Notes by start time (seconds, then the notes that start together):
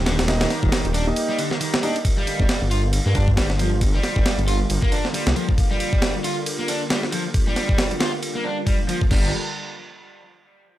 Already playing: D#1 G3 A#3 G4
0.06 D3, snare, ride
0.19 snare, ride
0.28 A#3 D#4 G4 D#5, snare, ride
0.41 D#3, snare, ride
0.50 snare, ride
0.63 D#1, kick
0.72 snare, ride
0.85 D#1, ride
0.94 D4, ride
1.07 A#3 D#4 G4 D#5
1.16 ride
1.29 G3
1.38 D3, ride
1.51 D#3, snare
1.60 D#3, ride
1.74 snare
1.83 A#3 D4 D#4 G4 D#5, ride
1.96 ride
2.04 D3 G3 A#3 F4, kick, ride
2.17 G3
2.27 ride
2.40 G1, kick
2.49 snare, ride
2.62 G1
2.71 F4, ride
2.93 ride
3.06 G2 A#3
3.15 D4, kick, ride
3.28 kick
3.37 G1 G3, snare, ride
3.50 snare
3.59 F3, ride
3.81 kick, ride
3.94 G3
4.03 snare, ride
4.16 G1, kick
4.26 snare, ride
4.38 G1, ride
4.48 F4, ride
4.70 G1, ride
4.82 A#3, kick
4.92 D4, ride
5.05 snare
5.14 G3, ride
5.27 C2, snare
5.36 F3, ride
5.49 kick
5.58 kick, ride
5.71 G3
5.80 ride
5.93 kick
6.02 snare, ride
6.24 F4, ride
6.46 ride
6.59 A#3
6.68 D4, ride
6.90 G3, snare, ride
7.03 snare
7.12 F3, ride
7.34 kick, ride
7.47 G3
7.56 snare, ride
7.69 kick
7.78 snare, ride
7.91 ride
8.01 F4, snare, ride
8.23 ride
8.35 A#3
8.44 D4
8.66 G3, kick, ride
8.88 F3, ride
9.01 kick
9.11 G1 D3 G3 A#3 F4, kick, crash